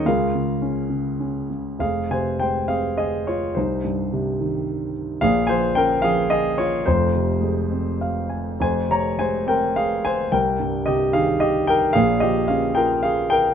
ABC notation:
X:1
M:3/4
L:1/8
Q:1/4=107
K:Fm
V:1 name="Grand piano"
[FABf]4- [FABf] z | [Af] [ca] [cg] [Af] [Ae] [Fd] | [Ec]4 z2 | [Af] [ca] [Bg] [Af] [Ae] [Fd] |
[Fc]4 f a | [ca] [db] [ca] [Bg] [Af] [ca] | [Bg]2 [Ge] [Af] [Ge] [Bg] | [Af] [Ge] [Af] [Bg] [Af] [Bg] |]
V:2 name="Grand piano" clef=bass
D,, D, D D, D D, | [F,,,F,,] C, A, C3 | C,, G,, C, E,3 | [B,,,B,,] F, D F,3 |
[F,,,F,,] C, A, C3 | [F,,,F,,] C, A, C3 | C,, G,, C, E,3 | [B,,,B,,] F, D F3 |]